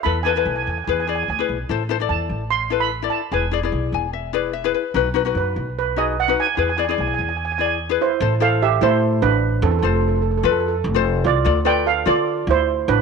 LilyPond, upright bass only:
\new Staff \with { instrumentName = "Upright bass" } { \clef bass \time 4/4 \key e \phrygian \tempo 4 = 147 e,4 b,,8 e,8 e,4 d,8 b,,8 | a,,4 e,8 a,,2 r8 | e,,4 b,,8 e,,2 r8 | b,,4 fis,8 b,,2 r8 |
e,4 b,,8 e,2 r8 | \key a \minor a,,4. a,4 a,,4 e,8 | f,,4. f,4 f,,4 c,8 | d,4. d4 d,4 a,,8 | }